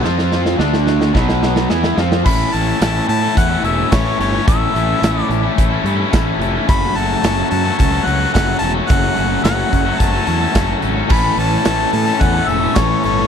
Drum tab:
CC |----------------|x---------------|----------------|----------------|
HH |----------------|--x-x-x-x-x-x-x-|x-x-x-x-x-x-x-x-|x-x-x-x-x-x-x-x-|
TB |----------------|----x-------x---|----x-------x---|----x-------x---|
SD |oooooooooooooooo|----o-------o---|----o-------o---|----o-------o---|
BD |--------o-------|o-------o---o---|o-------o---o---|o-------o---o---|

CC |----------------|x---------------|
HH |x-x-x-x-x-x-x-x-|--x-x-x-x-x-x-x-|
TB |----x-------x---|----x-------x---|
SD |----o-------o---|----o-------o---|
BD |o-----o-o---o---|o-------o---o---|